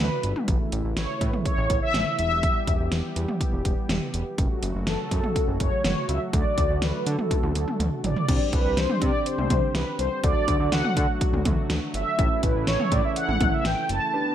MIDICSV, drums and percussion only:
0, 0, Header, 1, 2, 480
1, 0, Start_track
1, 0, Tempo, 487805
1, 472, Time_signature, 4, 2, 24, 8
1, 14119, End_track
2, 0, Start_track
2, 0, Title_t, "Drums"
2, 231, Note_on_c, 9, 42, 65
2, 329, Note_off_c, 9, 42, 0
2, 354, Note_on_c, 9, 47, 94
2, 453, Note_off_c, 9, 47, 0
2, 472, Note_on_c, 9, 36, 112
2, 472, Note_on_c, 9, 42, 74
2, 570, Note_off_c, 9, 42, 0
2, 571, Note_off_c, 9, 36, 0
2, 712, Note_on_c, 9, 42, 75
2, 810, Note_off_c, 9, 42, 0
2, 951, Note_on_c, 9, 38, 100
2, 953, Note_on_c, 9, 42, 68
2, 1049, Note_off_c, 9, 38, 0
2, 1051, Note_off_c, 9, 42, 0
2, 1192, Note_on_c, 9, 36, 86
2, 1193, Note_on_c, 9, 42, 78
2, 1290, Note_off_c, 9, 36, 0
2, 1291, Note_off_c, 9, 42, 0
2, 1312, Note_on_c, 9, 45, 93
2, 1410, Note_off_c, 9, 45, 0
2, 1431, Note_on_c, 9, 36, 92
2, 1433, Note_on_c, 9, 42, 73
2, 1530, Note_off_c, 9, 36, 0
2, 1531, Note_off_c, 9, 42, 0
2, 1672, Note_on_c, 9, 36, 88
2, 1672, Note_on_c, 9, 42, 73
2, 1770, Note_off_c, 9, 42, 0
2, 1771, Note_off_c, 9, 36, 0
2, 1911, Note_on_c, 9, 38, 104
2, 1911, Note_on_c, 9, 45, 98
2, 1915, Note_on_c, 9, 42, 72
2, 2009, Note_off_c, 9, 45, 0
2, 2010, Note_off_c, 9, 38, 0
2, 2013, Note_off_c, 9, 42, 0
2, 2151, Note_on_c, 9, 42, 64
2, 2250, Note_off_c, 9, 42, 0
2, 2392, Note_on_c, 9, 36, 110
2, 2392, Note_on_c, 9, 42, 76
2, 2491, Note_off_c, 9, 36, 0
2, 2491, Note_off_c, 9, 42, 0
2, 2632, Note_on_c, 9, 36, 88
2, 2632, Note_on_c, 9, 42, 77
2, 2730, Note_off_c, 9, 36, 0
2, 2731, Note_off_c, 9, 42, 0
2, 2869, Note_on_c, 9, 38, 100
2, 2871, Note_on_c, 9, 42, 67
2, 2968, Note_off_c, 9, 38, 0
2, 2970, Note_off_c, 9, 42, 0
2, 3112, Note_on_c, 9, 42, 75
2, 3210, Note_off_c, 9, 42, 0
2, 3232, Note_on_c, 9, 45, 92
2, 3330, Note_off_c, 9, 45, 0
2, 3352, Note_on_c, 9, 36, 92
2, 3353, Note_on_c, 9, 42, 73
2, 3450, Note_off_c, 9, 36, 0
2, 3452, Note_off_c, 9, 42, 0
2, 3592, Note_on_c, 9, 36, 89
2, 3593, Note_on_c, 9, 42, 76
2, 3691, Note_off_c, 9, 36, 0
2, 3691, Note_off_c, 9, 42, 0
2, 3831, Note_on_c, 9, 38, 108
2, 3831, Note_on_c, 9, 45, 95
2, 3835, Note_on_c, 9, 42, 72
2, 3929, Note_off_c, 9, 45, 0
2, 3930, Note_off_c, 9, 38, 0
2, 3933, Note_off_c, 9, 42, 0
2, 4072, Note_on_c, 9, 42, 65
2, 4170, Note_off_c, 9, 42, 0
2, 4312, Note_on_c, 9, 36, 114
2, 4313, Note_on_c, 9, 42, 75
2, 4411, Note_off_c, 9, 36, 0
2, 4411, Note_off_c, 9, 42, 0
2, 4552, Note_on_c, 9, 42, 74
2, 4650, Note_off_c, 9, 42, 0
2, 4790, Note_on_c, 9, 38, 105
2, 4792, Note_on_c, 9, 42, 69
2, 4888, Note_off_c, 9, 38, 0
2, 4890, Note_off_c, 9, 42, 0
2, 5032, Note_on_c, 9, 36, 85
2, 5033, Note_on_c, 9, 42, 77
2, 5130, Note_off_c, 9, 36, 0
2, 5131, Note_off_c, 9, 42, 0
2, 5152, Note_on_c, 9, 45, 90
2, 5250, Note_off_c, 9, 45, 0
2, 5272, Note_on_c, 9, 36, 97
2, 5274, Note_on_c, 9, 42, 73
2, 5370, Note_off_c, 9, 36, 0
2, 5372, Note_off_c, 9, 42, 0
2, 5512, Note_on_c, 9, 36, 91
2, 5512, Note_on_c, 9, 42, 74
2, 5610, Note_off_c, 9, 42, 0
2, 5611, Note_off_c, 9, 36, 0
2, 5750, Note_on_c, 9, 45, 98
2, 5751, Note_on_c, 9, 38, 104
2, 5755, Note_on_c, 9, 42, 72
2, 5849, Note_off_c, 9, 38, 0
2, 5849, Note_off_c, 9, 45, 0
2, 5853, Note_off_c, 9, 42, 0
2, 5991, Note_on_c, 9, 42, 64
2, 6090, Note_off_c, 9, 42, 0
2, 6232, Note_on_c, 9, 36, 114
2, 6232, Note_on_c, 9, 42, 76
2, 6331, Note_off_c, 9, 36, 0
2, 6331, Note_off_c, 9, 42, 0
2, 6471, Note_on_c, 9, 42, 75
2, 6472, Note_on_c, 9, 36, 87
2, 6570, Note_off_c, 9, 36, 0
2, 6570, Note_off_c, 9, 42, 0
2, 6710, Note_on_c, 9, 38, 102
2, 6712, Note_on_c, 9, 42, 69
2, 6808, Note_off_c, 9, 38, 0
2, 6810, Note_off_c, 9, 42, 0
2, 6952, Note_on_c, 9, 42, 77
2, 7051, Note_off_c, 9, 42, 0
2, 7072, Note_on_c, 9, 45, 90
2, 7170, Note_off_c, 9, 45, 0
2, 7192, Note_on_c, 9, 36, 93
2, 7193, Note_on_c, 9, 48, 56
2, 7194, Note_on_c, 9, 42, 74
2, 7290, Note_off_c, 9, 36, 0
2, 7292, Note_off_c, 9, 42, 0
2, 7292, Note_off_c, 9, 48, 0
2, 7313, Note_on_c, 9, 48, 51
2, 7412, Note_off_c, 9, 48, 0
2, 7433, Note_on_c, 9, 42, 76
2, 7532, Note_off_c, 9, 42, 0
2, 7554, Note_on_c, 9, 47, 64
2, 7653, Note_off_c, 9, 47, 0
2, 7674, Note_on_c, 9, 45, 81
2, 7677, Note_on_c, 9, 42, 73
2, 7773, Note_off_c, 9, 45, 0
2, 7775, Note_off_c, 9, 42, 0
2, 7913, Note_on_c, 9, 42, 62
2, 7914, Note_on_c, 9, 43, 99
2, 8011, Note_off_c, 9, 42, 0
2, 8012, Note_off_c, 9, 43, 0
2, 8033, Note_on_c, 9, 43, 85
2, 8131, Note_off_c, 9, 43, 0
2, 8153, Note_on_c, 9, 36, 115
2, 8153, Note_on_c, 9, 42, 78
2, 8153, Note_on_c, 9, 49, 95
2, 8251, Note_off_c, 9, 36, 0
2, 8251, Note_off_c, 9, 42, 0
2, 8251, Note_off_c, 9, 49, 0
2, 8392, Note_on_c, 9, 36, 89
2, 8392, Note_on_c, 9, 42, 76
2, 8491, Note_off_c, 9, 36, 0
2, 8491, Note_off_c, 9, 42, 0
2, 8631, Note_on_c, 9, 38, 101
2, 8633, Note_on_c, 9, 42, 69
2, 8729, Note_off_c, 9, 38, 0
2, 8731, Note_off_c, 9, 42, 0
2, 8753, Note_on_c, 9, 45, 98
2, 8852, Note_off_c, 9, 45, 0
2, 8872, Note_on_c, 9, 36, 86
2, 8872, Note_on_c, 9, 42, 77
2, 8970, Note_off_c, 9, 36, 0
2, 8971, Note_off_c, 9, 42, 0
2, 9114, Note_on_c, 9, 42, 73
2, 9212, Note_off_c, 9, 42, 0
2, 9234, Note_on_c, 9, 47, 63
2, 9333, Note_off_c, 9, 47, 0
2, 9351, Note_on_c, 9, 42, 75
2, 9351, Note_on_c, 9, 45, 94
2, 9352, Note_on_c, 9, 36, 92
2, 9449, Note_off_c, 9, 42, 0
2, 9449, Note_off_c, 9, 45, 0
2, 9450, Note_off_c, 9, 36, 0
2, 9591, Note_on_c, 9, 38, 107
2, 9595, Note_on_c, 9, 42, 72
2, 9689, Note_off_c, 9, 38, 0
2, 9693, Note_off_c, 9, 42, 0
2, 9831, Note_on_c, 9, 42, 66
2, 9929, Note_off_c, 9, 42, 0
2, 10072, Note_on_c, 9, 36, 121
2, 10072, Note_on_c, 9, 42, 76
2, 10170, Note_off_c, 9, 42, 0
2, 10171, Note_off_c, 9, 36, 0
2, 10311, Note_on_c, 9, 42, 79
2, 10312, Note_on_c, 9, 36, 87
2, 10410, Note_off_c, 9, 36, 0
2, 10410, Note_off_c, 9, 42, 0
2, 10549, Note_on_c, 9, 38, 100
2, 10551, Note_on_c, 9, 42, 71
2, 10648, Note_off_c, 9, 38, 0
2, 10650, Note_off_c, 9, 42, 0
2, 10673, Note_on_c, 9, 45, 100
2, 10771, Note_off_c, 9, 45, 0
2, 10791, Note_on_c, 9, 36, 86
2, 10792, Note_on_c, 9, 42, 79
2, 10890, Note_off_c, 9, 36, 0
2, 10891, Note_off_c, 9, 42, 0
2, 11031, Note_on_c, 9, 36, 96
2, 11033, Note_on_c, 9, 42, 75
2, 11130, Note_off_c, 9, 36, 0
2, 11131, Note_off_c, 9, 42, 0
2, 11153, Note_on_c, 9, 47, 62
2, 11252, Note_off_c, 9, 47, 0
2, 11271, Note_on_c, 9, 42, 76
2, 11271, Note_on_c, 9, 45, 99
2, 11272, Note_on_c, 9, 36, 93
2, 11369, Note_off_c, 9, 42, 0
2, 11369, Note_off_c, 9, 45, 0
2, 11370, Note_off_c, 9, 36, 0
2, 11510, Note_on_c, 9, 38, 109
2, 11514, Note_on_c, 9, 42, 74
2, 11609, Note_off_c, 9, 38, 0
2, 11612, Note_off_c, 9, 42, 0
2, 11750, Note_on_c, 9, 42, 65
2, 11849, Note_off_c, 9, 42, 0
2, 11992, Note_on_c, 9, 36, 119
2, 11992, Note_on_c, 9, 42, 79
2, 12091, Note_off_c, 9, 36, 0
2, 12091, Note_off_c, 9, 42, 0
2, 12231, Note_on_c, 9, 42, 77
2, 12232, Note_on_c, 9, 36, 89
2, 12330, Note_off_c, 9, 36, 0
2, 12330, Note_off_c, 9, 42, 0
2, 12469, Note_on_c, 9, 38, 105
2, 12471, Note_on_c, 9, 42, 70
2, 12568, Note_off_c, 9, 38, 0
2, 12570, Note_off_c, 9, 42, 0
2, 12592, Note_on_c, 9, 45, 99
2, 12691, Note_off_c, 9, 45, 0
2, 12710, Note_on_c, 9, 42, 78
2, 12711, Note_on_c, 9, 36, 89
2, 12809, Note_off_c, 9, 36, 0
2, 12809, Note_off_c, 9, 42, 0
2, 12951, Note_on_c, 9, 42, 75
2, 13050, Note_off_c, 9, 42, 0
2, 13073, Note_on_c, 9, 47, 63
2, 13172, Note_off_c, 9, 47, 0
2, 13191, Note_on_c, 9, 42, 75
2, 13191, Note_on_c, 9, 45, 99
2, 13192, Note_on_c, 9, 36, 94
2, 13289, Note_off_c, 9, 45, 0
2, 13290, Note_off_c, 9, 36, 0
2, 13290, Note_off_c, 9, 42, 0
2, 13430, Note_on_c, 9, 38, 106
2, 13434, Note_on_c, 9, 42, 73
2, 13529, Note_off_c, 9, 38, 0
2, 13533, Note_off_c, 9, 42, 0
2, 13671, Note_on_c, 9, 42, 68
2, 13769, Note_off_c, 9, 42, 0
2, 14119, End_track
0, 0, End_of_file